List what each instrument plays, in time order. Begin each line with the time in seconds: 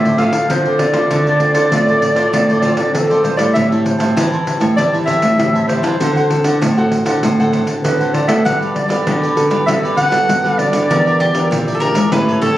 Already playing: nylon-string guitar A2 D3 A3 C4 F4, clarinet E5
0.05 cavaquinho A4 C5 D5, pandeiro
0.18 nylon-string guitar A3 C4 F4, cavaquinho F4 A4 C5 D5, clarinet F5, pandeiro
0.32 nylon-string guitar D3, muted cavaquinho stroke, pandeiro
0.50 nylon-string guitar A2 D3 A3 C4 F4, clarinet C5, pandeiro
0.65 cavaquinho A4 C5 D5, pandeiro
0.79 cavaquinho F4 A4 C5 D5, clarinet D5, pandeiro
0.93 nylon-string guitar A3 C4 F4, cavaquinho A4 C5 D5, pandeiro
1.10 nylon-string guitar D3, cavaquinho F4 A4 C5 D5, pandeiro
1.27 cavaquinho A4 C5 D5, pandeiro
1.40 nylon-string guitar A3 C4 F4, muted cavaquinho stroke, pandeiro
1.54 nylon-string guitar D3, cavaquinho A4 C5 D5, pandeiro
1.71 nylon-string guitar A2 A3 C4 F4, cavaquinho F4 A4 C5 D5, pandeiro
1.88 cavaquinho A4 C5 D5, pandeiro
2.02 pandeiro
2.15 nylon-string guitar A3 C4 F4, cavaquinho A4 C5 D5, pandeiro
2.32 nylon-string guitar A2 D3, cavaquinho F4 A4 C5 D5, pandeiro
2.49 cavaquinho A4 C5 D5, pandeiro
2.62 nylon-string guitar A3 C4 F4, cavaquinho F4 A4 C5 D5, pandeiro
2.77 nylon-string guitar D3, muted cavaquinho stroke, pandeiro
2.93 nylon-string guitar E2 A2 A3 C4 F4, clarinet A4, pandeiro
3.10 nylon-string guitar F2, cavaquinho A4 C5 D5, pandeiro
3.23 nylon-string guitar G2, cavaquinho F4 A4 C5 D5, clarinet C5, pandeiro
3.37 nylon-string guitar A2 G3 C4 E4, cavaquinho A4 C5 D5, clarinet D5, pandeiro
3.54 nylon-string guitar A2, cavaquinho G4 C5 E5 A5, clarinet E5, pandeiro
3.71 nylon-string guitar G3 C4 E4, cavaquinho C5 E5 A5, pandeiro
3.83 clarinet C5, muted cavaquinho stroke, pandeiro
3.99 nylon-string guitar A2, cavaquinho C5 E5 A5, pandeiro
4.16 nylon-string guitar E3 G3 C4 E4, cavaquinho G4 C5 E5 A5, pandeiro
4.32 cavaquinho C5 E5 A5, pandeiro
4.46 nylon-string guitar G3 C4 E4, pandeiro
4.60 nylon-string guitar A2, cavaquinho C5 E5 A5, pandeiro
4.77 nylon-string guitar A2 E3, cavaquinho G4 C5 E5 A5, clarinet D5, pandeiro
4.92 nylon-string guitar G3 C4 E4, cavaquinho C5 E5 A5, pandeiro
5.06 cavaquinho G4 C5 E5 A5, clarinet E5, pandeiro
5.21 nylon-string guitar A2, muted cavaquinho stroke, pandeiro
5.38 nylon-string guitar A2 E3 G3 C4 E4, pandeiro
5.54 cavaquinho C5 E5 A5, pandeiro
5.68 nylon-string guitar G3 C4 E4, cavaquinho G4 C5 E5 A5, clarinet C5, pandeiro
5.83 nylon-string guitar E3, cavaquinho C5 E5 A5, pandeiro
6.00 nylon-string guitar D3 C4 F#4 A4, cavaquinho D4 A4 C5 F#5, pandeiro
6.16 cavaquinho A4 C5 F#5, pandeiro
6.30 nylon-string guitar C4 F#4 A4, muted cavaquinho stroke, pandeiro
6.44 nylon-string guitar D3, cavaquinho A4 C5 F#5, pandeiro
6.61 nylon-string guitar A2, cavaquinho D4 A4 C5 F#5, pandeiro
6.77 nylon-string guitar C4 F#4 A4, cavaquinho A4 C5 F#5, pandeiro
6.92 pandeiro
7.05 nylon-string guitar D3, cavaquinho A4 C5 F#5, pandeiro
7.22 nylon-string guitar A2 D3, cavaquinho D4 A4 C5 F#5, pandeiro
7.39 nylon-string guitar C4 F#4 A4, cavaquinho A4 C5 F#5, pandeiro
7.52 cavaquinho D4 A4 C5 F#5, pandeiro
7.67 nylon-string guitar D3, muted cavaquinho stroke, pandeiro
7.83 nylon-string guitar A2 D3 C4 F#4 A4, clarinet B4, pandeiro
8.00 cavaquinho A4 C5 F#5, pandeiro
8.13 cavaquinho D4 A4 C5 F#5, clarinet D5, pandeiro
8.27 nylon-string guitar A2 B3 F#4 A4, cavaquinho A4 C5 F#5, clarinet E5, pandeiro
8.45 nylon-string guitar G2 G3, cavaquinho F#4 G4 B4 D5, clarinet F#5, pandeiro
8.60 cavaquinho G4 B4 D5, pandeiro
8.74 clarinet D5, muted cavaquinho stroke, pandeiro
8.88 nylon-string guitar G2 B3 F#4 A4, cavaquinho G4 B4 D5, pandeiro
9.06 nylon-string guitar D3, cavaquinho F#4 G4 B4 D5, pandeiro
9.21 cavaquinho G4 B4 D5, pandeiro
9.36 nylon-string guitar B3 F#4 A4, pandeiro
9.50 nylon-string guitar G2, cavaquinho G4 B4 D5, pandeiro
9.66 nylon-string guitar D3 G3 B3 F#4 A4, cavaquinho F#4 G4 B4 D5, clarinet E5, pandeiro
9.83 cavaquinho G4 B4 D5, pandeiro
9.96 cavaquinho F#4 G4 B4 D5, clarinet F#5, pandeiro
10.11 nylon-string guitar G2 B3 F#4 A4, muted cavaquinho stroke, pandeiro
10.29 nylon-string guitar G2 D3, pandeiro
10.43 nylon-string guitar B3 F#4 A4, cavaquinho G4 B4 D5, pandeiro
10.58 cavaquinho F#4 G4 B4 D5, clarinet D5, pandeiro
10.72 nylon-string guitar D3, cavaquinho G4 B4 D5, pandeiro
10.89 nylon-string guitar E2 E3 D4 G4 A#4, cavaquinho G4 A#4 D5 E5, pandeiro
11.05 cavaquinho A#4 D5 E5, pandeiro
11.19 mandolin G4, muted cavaquinho stroke, pandeiro
11.33 nylon-string guitar E2 D4 G4 A#4, cavaquinho A#4 D5 E5, pandeiro
11.50 nylon-string guitar A#2 E3, cavaquinho G4 A#4 D5 E5, pandeiro
11.67 cavaquinho A#4 D5 E5, pandeiro
11.75 mandolin A4
11.80 nylon-string guitar D4 G4 A#4, mandolin A#4, pandeiro
11.94 nylon-string guitar G#2, cavaquinho A#4 D5 E5, pandeiro
12.12 nylon-string guitar A2 G3 C#4 E4, cavaquinho G4 A4 C#5 E5, mandolin B4, pandeiro
12.28 cavaquinho A4 C#5 E5, pandeiro
12.42 cavaquinho G4 A4 C#5 E5, mandolin A4, pandeiro